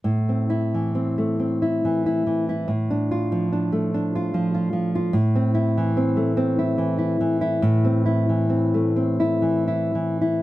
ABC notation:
X:1
M:6/8
L:1/16
Q:3/8=46
K:Am
V:1 name="Nylon-string guitar"
A,, C E E, C A, C E E, E E, E | A,, D F F, D A, D F F, F F, F | A,, C E E, C A, C E E, E E, E | A,, C E E, C A, C E E, E E, E |]